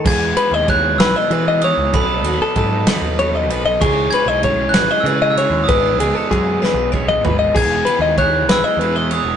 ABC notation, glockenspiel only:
X:1
M:6/8
L:1/8
Q:3/8=64
K:E
V:1 name="Glockenspiel"
g'2 f' e'2 d' | b4 z2 | c' g'2 f' e' e' | d'4 z2 |
g'2 f' e'2 d' |]